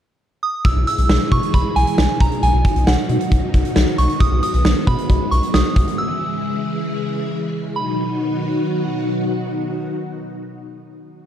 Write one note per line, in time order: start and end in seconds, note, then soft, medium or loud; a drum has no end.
0.43 0.66 D#6 medium
0.65 0.74 B1 loud
0.65 4.17 B2 medium
0.65 2.41 E3 medium
0.65 2.41 G#3 medium
0.65 2.41 E4 medium
0.65 2.41 G#4 medium
0.65 0.75 E6 loud
0.65 kick loud
0.65 closed hi-hat medium
0.76 0.85 B1 loud
0.87 1.33 E6 loud
0.87 closed hi-hat medium
0.98 1.07 B1 medium
0.98 closed hi-hat medium
1.09 1.18 B1 loud
1.09 snare loud
1.31 1.40 B2 medium
1.31 1.55 C#6 medium
1.31 kick medium
1.31 closed hi-hat medium
1.43 closed hi-hat medium
1.54 1.63 B1 loud
1.54 1.77 B5 medium
1.54 kick medium
1.54 closed hi-hat medium
1.76 1.85 B1 loud
1.76 2.22 G#5 medium
1.76 closed hi-hat medium
1.87 closed hi-hat soft
1.98 2.07 B1 loud
1.98 snare loud
2.20 2.29 B1 loud
2.20 2.31 A#5 medium
2.20 kick loud
2.20 closed hi-hat medium
2.32 closed hi-hat soft
2.43 2.51 B1 loud
2.43 5.95 D#3 medium
2.43 4.19 F#3 medium
2.43 4.19 D#4 medium
2.43 5.95 F#4 medium
2.43 2.89 G#5 medium
2.43 closed hi-hat medium
2.54 2.63 B1 medium
2.65 kick medium
2.65 closed hi-hat medium
2.76 2.85 B1 medium
2.76 closed hi-hat medium
2.87 2.96 B1 loud
2.87 4.02 F#5 medium
2.87 snare loud
3.09 3.18 B2 loud
3.09 closed hi-hat medium
3.21 closed hi-hat medium
3.32 3.40 B1 loud
3.32 kick medium
3.32 closed hi-hat medium
3.54 3.63 B1 loud
3.54 kick medium
3.54 closed hi-hat medium
3.65 closed hi-hat medium
3.76 3.85 B1 loud
3.76 snare loud
3.98 4.07 B1 loud
3.98 4.08 C#6 medium
3.98 closed hi-hat medium
4.09 closed hi-hat soft
4.20 4.29 B1 loud
4.20 5.96 F#3 medium
4.20 7.72 G#3 medium
4.20 5.96 B3 medium
4.20 4.42 D#6 loud
4.20 kick loud
4.20 closed hi-hat medium
4.32 4.41 B1 loud
4.43 4.89 D#6 loud
4.43 closed hi-hat medium
4.54 4.63 B1 loud
4.54 closed hi-hat medium
4.65 4.74 B1 loud
4.65 snare loud
4.87 4.96 B2 medium
4.87 5.33 B5 medium
4.87 kick medium
4.87 closed hi-hat medium
4.98 closed hi-hat medium
5.10 5.18 B1 loud
5.10 kick medium
5.10 closed hi-hat medium
5.31 5.40 B1 loud
5.31 5.41 C#6 medium
5.31 closed hi-hat medium
5.43 closed hi-hat medium
5.54 5.63 B1 loud
5.54 6.00 D#6 medium
5.54 snare loud
5.76 5.85 B1 loud
5.76 kick loud
5.76 closed hi-hat medium
5.88 closed hi-hat soft
5.98 7.74 C#3 medium
5.98 7.74 E3 medium
5.98 7.74 E4 medium
5.98 7.74 G#4 medium
5.98 7.50 E6 medium
7.76 11.20 B2 medium
7.76 11.20 D#3 medium
7.76 11.20 F#3 medium
7.76 11.20 D#4 medium
7.76 11.20 F#4 medium
7.76 11.20 B5 medium